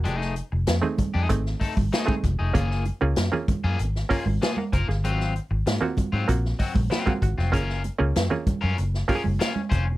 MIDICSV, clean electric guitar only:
0, 0, Header, 1, 3, 480
1, 0, Start_track
1, 0, Tempo, 623053
1, 42, Time_signature, 4, 2, 24, 8
1, 7686, End_track
2, 0, Start_track
2, 0, Title_t, "Clean electric guitar"
2, 0, Program_c, 0, 27
2, 31, Note_on_c, 0, 56, 91
2, 36, Note_on_c, 0, 62, 78
2, 40, Note_on_c, 0, 67, 80
2, 123, Note_off_c, 0, 56, 0
2, 123, Note_on_c, 0, 57, 91
2, 128, Note_off_c, 0, 62, 0
2, 128, Note_on_c, 0, 63, 78
2, 132, Note_off_c, 0, 67, 0
2, 132, Note_on_c, 0, 68, 80
2, 257, Note_off_c, 0, 57, 0
2, 260, Note_off_c, 0, 63, 0
2, 262, Note_off_c, 0, 68, 0
2, 876, Note_on_c, 0, 68, 85
2, 881, Note_on_c, 0, 63, 75
2, 889, Note_on_c, 0, 57, 59
2, 984, Note_off_c, 0, 57, 0
2, 987, Note_off_c, 0, 63, 0
2, 990, Note_off_c, 0, 68, 0
2, 1230, Note_on_c, 0, 57, 60
2, 1234, Note_on_c, 0, 63, 65
2, 1241, Note_on_c, 0, 69, 77
2, 1347, Note_off_c, 0, 69, 0
2, 1349, Note_off_c, 0, 63, 0
2, 1364, Note_off_c, 0, 57, 0
2, 1483, Note_on_c, 0, 57, 78
2, 1484, Note_on_c, 0, 63, 91
2, 1491, Note_on_c, 0, 68, 85
2, 1646, Note_off_c, 0, 57, 0
2, 1646, Note_off_c, 0, 63, 0
2, 1650, Note_off_c, 0, 68, 0
2, 1839, Note_on_c, 0, 68, 63
2, 1844, Note_on_c, 0, 63, 53
2, 1848, Note_on_c, 0, 57, 45
2, 1956, Note_off_c, 0, 57, 0
2, 1957, Note_off_c, 0, 68, 0
2, 1959, Note_off_c, 0, 63, 0
2, 1959, Note_on_c, 0, 58, 80
2, 1962, Note_on_c, 0, 65, 79
2, 1967, Note_on_c, 0, 68, 89
2, 2183, Note_off_c, 0, 58, 0
2, 2184, Note_off_c, 0, 65, 0
2, 2186, Note_off_c, 0, 68, 0
2, 2803, Note_on_c, 0, 68, 102
2, 2805, Note_on_c, 0, 65, 90
2, 2813, Note_on_c, 0, 58, 76
2, 2917, Note_off_c, 0, 58, 0
2, 2919, Note_off_c, 0, 65, 0
2, 2922, Note_off_c, 0, 68, 0
2, 3156, Note_on_c, 0, 58, 56
2, 3161, Note_on_c, 0, 65, 72
2, 3164, Note_on_c, 0, 68, 77
2, 3275, Note_off_c, 0, 68, 0
2, 3281, Note_off_c, 0, 65, 0
2, 3287, Note_off_c, 0, 58, 0
2, 3403, Note_on_c, 0, 58, 84
2, 3407, Note_on_c, 0, 65, 82
2, 3412, Note_on_c, 0, 68, 80
2, 3515, Note_off_c, 0, 68, 0
2, 3522, Note_off_c, 0, 65, 0
2, 3566, Note_off_c, 0, 58, 0
2, 3642, Note_on_c, 0, 58, 72
2, 3649, Note_on_c, 0, 65, 73
2, 3651, Note_on_c, 0, 70, 77
2, 3763, Note_off_c, 0, 65, 0
2, 3764, Note_off_c, 0, 70, 0
2, 3771, Note_off_c, 0, 58, 0
2, 3884, Note_on_c, 0, 54, 82
2, 3887, Note_on_c, 0, 60, 79
2, 3891, Note_on_c, 0, 65, 88
2, 4106, Note_off_c, 0, 54, 0
2, 4107, Note_off_c, 0, 60, 0
2, 4109, Note_off_c, 0, 65, 0
2, 4717, Note_on_c, 0, 65, 79
2, 4724, Note_on_c, 0, 60, 71
2, 4728, Note_on_c, 0, 54, 72
2, 4828, Note_off_c, 0, 54, 0
2, 4830, Note_off_c, 0, 60, 0
2, 4836, Note_off_c, 0, 65, 0
2, 5076, Note_on_c, 0, 54, 63
2, 5083, Note_on_c, 0, 60, 63
2, 5084, Note_on_c, 0, 66, 63
2, 5193, Note_off_c, 0, 60, 0
2, 5195, Note_off_c, 0, 66, 0
2, 5208, Note_off_c, 0, 54, 0
2, 5320, Note_on_c, 0, 54, 88
2, 5322, Note_on_c, 0, 60, 82
2, 5325, Note_on_c, 0, 65, 98
2, 5485, Note_off_c, 0, 54, 0
2, 5486, Note_off_c, 0, 60, 0
2, 5487, Note_off_c, 0, 65, 0
2, 5683, Note_on_c, 0, 65, 53
2, 5687, Note_on_c, 0, 60, 60
2, 5690, Note_on_c, 0, 54, 48
2, 5789, Note_off_c, 0, 65, 0
2, 5790, Note_off_c, 0, 60, 0
2, 5793, Note_on_c, 0, 61, 76
2, 5798, Note_on_c, 0, 65, 83
2, 5806, Note_on_c, 0, 70, 87
2, 5814, Note_off_c, 0, 54, 0
2, 6020, Note_off_c, 0, 61, 0
2, 6023, Note_off_c, 0, 65, 0
2, 6027, Note_off_c, 0, 70, 0
2, 6633, Note_on_c, 0, 70, 77
2, 6638, Note_on_c, 0, 65, 84
2, 6639, Note_on_c, 0, 61, 83
2, 6751, Note_off_c, 0, 61, 0
2, 6757, Note_off_c, 0, 65, 0
2, 6762, Note_off_c, 0, 70, 0
2, 7000, Note_on_c, 0, 61, 64
2, 7006, Note_on_c, 0, 65, 72
2, 7007, Note_on_c, 0, 70, 72
2, 7108, Note_off_c, 0, 70, 0
2, 7114, Note_off_c, 0, 65, 0
2, 7129, Note_off_c, 0, 61, 0
2, 7235, Note_on_c, 0, 61, 76
2, 7238, Note_on_c, 0, 65, 86
2, 7243, Note_on_c, 0, 70, 85
2, 7342, Note_off_c, 0, 70, 0
2, 7346, Note_off_c, 0, 65, 0
2, 7402, Note_off_c, 0, 61, 0
2, 7468, Note_on_c, 0, 61, 66
2, 7469, Note_on_c, 0, 65, 73
2, 7475, Note_on_c, 0, 72, 67
2, 7592, Note_off_c, 0, 72, 0
2, 7597, Note_off_c, 0, 65, 0
2, 7603, Note_off_c, 0, 61, 0
2, 7686, End_track
3, 0, Start_track
3, 0, Title_t, "Muted clean electric guitar strokes"
3, 402, Note_on_c, 9, 29, 44
3, 479, Note_off_c, 9, 29, 0
3, 516, Note_on_c, 9, 29, 48
3, 593, Note_off_c, 9, 29, 0
3, 637, Note_on_c, 9, 29, 35
3, 714, Note_off_c, 9, 29, 0
3, 993, Note_on_c, 9, 29, 38
3, 1070, Note_off_c, 9, 29, 0
3, 1350, Note_on_c, 9, 29, 37
3, 1427, Note_off_c, 9, 29, 0
3, 1724, Note_on_c, 9, 29, 45
3, 1801, Note_off_c, 9, 29, 0
3, 2331, Note_on_c, 9, 29, 40
3, 2408, Note_off_c, 9, 29, 0
3, 2443, Note_on_c, 9, 29, 50
3, 2520, Note_off_c, 9, 29, 0
3, 2567, Note_on_c, 9, 29, 44
3, 2644, Note_off_c, 9, 29, 0
3, 2927, Note_on_c, 9, 29, 47
3, 3004, Note_off_c, 9, 29, 0
3, 3284, Note_on_c, 9, 29, 47
3, 3361, Note_off_c, 9, 29, 0
3, 3524, Note_on_c, 9, 29, 43
3, 3601, Note_off_c, 9, 29, 0
3, 3767, Note_on_c, 9, 29, 45
3, 3844, Note_off_c, 9, 29, 0
3, 4243, Note_on_c, 9, 29, 52
3, 4320, Note_off_c, 9, 29, 0
3, 4362, Note_on_c, 9, 29, 38
3, 4439, Note_off_c, 9, 29, 0
3, 4481, Note_on_c, 9, 29, 50
3, 4558, Note_off_c, 9, 29, 0
3, 5198, Note_on_c, 9, 29, 43
3, 5275, Note_off_c, 9, 29, 0
3, 5561, Note_on_c, 9, 29, 45
3, 5638, Note_off_c, 9, 29, 0
3, 6164, Note_on_c, 9, 29, 48
3, 6241, Note_off_c, 9, 29, 0
3, 6285, Note_on_c, 9, 29, 43
3, 6362, Note_off_c, 9, 29, 0
3, 6398, Note_on_c, 9, 29, 48
3, 6475, Note_off_c, 9, 29, 0
3, 6761, Note_on_c, 9, 29, 42
3, 6838, Note_off_c, 9, 29, 0
3, 7117, Note_on_c, 9, 29, 51
3, 7194, Note_off_c, 9, 29, 0
3, 7351, Note_on_c, 9, 29, 48
3, 7428, Note_off_c, 9, 29, 0
3, 7595, Note_on_c, 9, 29, 41
3, 7672, Note_off_c, 9, 29, 0
3, 7686, End_track
0, 0, End_of_file